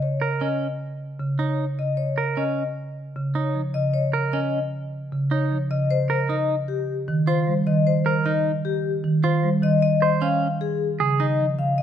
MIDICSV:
0, 0, Header, 1, 4, 480
1, 0, Start_track
1, 0, Tempo, 392157
1, 22, Time_signature, 5, 2, 24, 8
1, 14475, End_track
2, 0, Start_track
2, 0, Title_t, "Vibraphone"
2, 0, Program_c, 0, 11
2, 29, Note_on_c, 0, 73, 61
2, 336, Note_off_c, 0, 73, 0
2, 499, Note_on_c, 0, 75, 52
2, 813, Note_off_c, 0, 75, 0
2, 1707, Note_on_c, 0, 73, 54
2, 2016, Note_off_c, 0, 73, 0
2, 2187, Note_on_c, 0, 75, 53
2, 2415, Note_on_c, 0, 73, 60
2, 2496, Note_off_c, 0, 75, 0
2, 2731, Note_off_c, 0, 73, 0
2, 2898, Note_on_c, 0, 75, 58
2, 3212, Note_off_c, 0, 75, 0
2, 4103, Note_on_c, 0, 73, 58
2, 4414, Note_off_c, 0, 73, 0
2, 4579, Note_on_c, 0, 75, 63
2, 4817, Note_on_c, 0, 73, 61
2, 4893, Note_off_c, 0, 75, 0
2, 5132, Note_off_c, 0, 73, 0
2, 5300, Note_on_c, 0, 75, 60
2, 5613, Note_off_c, 0, 75, 0
2, 6499, Note_on_c, 0, 73, 61
2, 6813, Note_off_c, 0, 73, 0
2, 6986, Note_on_c, 0, 75, 61
2, 7228, Note_on_c, 0, 72, 72
2, 7295, Note_off_c, 0, 75, 0
2, 7536, Note_off_c, 0, 72, 0
2, 7710, Note_on_c, 0, 75, 65
2, 8017, Note_off_c, 0, 75, 0
2, 8179, Note_on_c, 0, 67, 59
2, 8493, Note_off_c, 0, 67, 0
2, 8901, Note_on_c, 0, 72, 75
2, 9214, Note_off_c, 0, 72, 0
2, 9385, Note_on_c, 0, 75, 72
2, 9628, Note_on_c, 0, 72, 68
2, 9695, Note_off_c, 0, 75, 0
2, 9936, Note_off_c, 0, 72, 0
2, 10105, Note_on_c, 0, 75, 68
2, 10415, Note_off_c, 0, 75, 0
2, 10586, Note_on_c, 0, 67, 72
2, 10895, Note_off_c, 0, 67, 0
2, 11303, Note_on_c, 0, 72, 69
2, 11614, Note_off_c, 0, 72, 0
2, 11790, Note_on_c, 0, 75, 77
2, 12010, Note_off_c, 0, 75, 0
2, 12024, Note_on_c, 0, 75, 78
2, 12335, Note_off_c, 0, 75, 0
2, 12502, Note_on_c, 0, 77, 61
2, 12814, Note_off_c, 0, 77, 0
2, 12986, Note_on_c, 0, 68, 69
2, 13295, Note_off_c, 0, 68, 0
2, 13707, Note_on_c, 0, 75, 70
2, 14016, Note_off_c, 0, 75, 0
2, 14182, Note_on_c, 0, 77, 63
2, 14420, Note_on_c, 0, 75, 68
2, 14475, Note_off_c, 0, 75, 0
2, 14475, Note_off_c, 0, 77, 0
2, 14475, End_track
3, 0, Start_track
3, 0, Title_t, "Clean electric guitar"
3, 0, Program_c, 1, 27
3, 263, Note_on_c, 1, 70, 48
3, 506, Note_on_c, 1, 61, 56
3, 574, Note_off_c, 1, 70, 0
3, 815, Note_off_c, 1, 61, 0
3, 1701, Note_on_c, 1, 63, 51
3, 2014, Note_off_c, 1, 63, 0
3, 2664, Note_on_c, 1, 70, 51
3, 2903, Note_on_c, 1, 61, 56
3, 2974, Note_off_c, 1, 70, 0
3, 3214, Note_off_c, 1, 61, 0
3, 4102, Note_on_c, 1, 63, 51
3, 4414, Note_off_c, 1, 63, 0
3, 5060, Note_on_c, 1, 70, 52
3, 5303, Note_on_c, 1, 61, 58
3, 5373, Note_off_c, 1, 70, 0
3, 5614, Note_off_c, 1, 61, 0
3, 6503, Note_on_c, 1, 63, 58
3, 6814, Note_off_c, 1, 63, 0
3, 7464, Note_on_c, 1, 70, 56
3, 7703, Note_on_c, 1, 63, 59
3, 7775, Note_off_c, 1, 70, 0
3, 8014, Note_off_c, 1, 63, 0
3, 8904, Note_on_c, 1, 65, 53
3, 9215, Note_off_c, 1, 65, 0
3, 9864, Note_on_c, 1, 70, 61
3, 10107, Note_on_c, 1, 63, 58
3, 10175, Note_off_c, 1, 70, 0
3, 10416, Note_off_c, 1, 63, 0
3, 11307, Note_on_c, 1, 65, 59
3, 11616, Note_off_c, 1, 65, 0
3, 12266, Note_on_c, 1, 72, 59
3, 12505, Note_on_c, 1, 61, 64
3, 12575, Note_off_c, 1, 72, 0
3, 12815, Note_off_c, 1, 61, 0
3, 13465, Note_on_c, 1, 68, 65
3, 13708, Note_on_c, 1, 63, 54
3, 13775, Note_off_c, 1, 68, 0
3, 14016, Note_off_c, 1, 63, 0
3, 14475, End_track
4, 0, Start_track
4, 0, Title_t, "Marimba"
4, 0, Program_c, 2, 12
4, 1464, Note_on_c, 2, 49, 68
4, 1775, Note_off_c, 2, 49, 0
4, 2187, Note_on_c, 2, 49, 61
4, 2496, Note_off_c, 2, 49, 0
4, 3867, Note_on_c, 2, 49, 72
4, 4176, Note_off_c, 2, 49, 0
4, 4344, Note_on_c, 2, 53, 51
4, 4593, Note_on_c, 2, 49, 67
4, 4655, Note_off_c, 2, 53, 0
4, 4898, Note_off_c, 2, 49, 0
4, 6270, Note_on_c, 2, 49, 80
4, 6577, Note_off_c, 2, 49, 0
4, 6750, Note_on_c, 2, 53, 49
4, 6986, Note_on_c, 2, 49, 70
4, 7057, Note_off_c, 2, 53, 0
4, 7295, Note_off_c, 2, 49, 0
4, 8667, Note_on_c, 2, 51, 84
4, 8976, Note_off_c, 2, 51, 0
4, 9146, Note_on_c, 2, 55, 54
4, 9387, Note_on_c, 2, 51, 75
4, 9455, Note_off_c, 2, 55, 0
4, 9696, Note_off_c, 2, 51, 0
4, 11065, Note_on_c, 2, 51, 84
4, 11375, Note_off_c, 2, 51, 0
4, 11546, Note_on_c, 2, 55, 64
4, 11779, Note_on_c, 2, 51, 73
4, 11855, Note_off_c, 2, 55, 0
4, 12093, Note_off_c, 2, 51, 0
4, 13459, Note_on_c, 2, 49, 80
4, 13773, Note_off_c, 2, 49, 0
4, 13948, Note_on_c, 2, 53, 56
4, 14182, Note_on_c, 2, 49, 60
4, 14256, Note_off_c, 2, 53, 0
4, 14475, Note_off_c, 2, 49, 0
4, 14475, End_track
0, 0, End_of_file